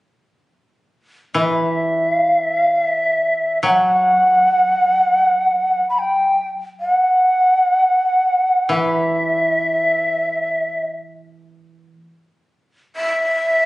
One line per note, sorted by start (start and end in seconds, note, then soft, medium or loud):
1.34 4.56 E3 soft
1.34 2.14 E5 soft
2.14 2.36 F5 soft
2.36 2.59 E5 soft
2.59 2.81 F5 soft
2.81 3.59 E5 soft
3.63 6.77 F#3 soft
3.63 3.70 G5 medium
3.69 5.86 F#5 medium
5.89 6.00 B5 soft
5.99 6.48 G5 medium
6.80 8.72 F#5 medium
8.69 11.85 E3 soft
8.69 10.86 E5 soft
12.96 13.65 E5 medium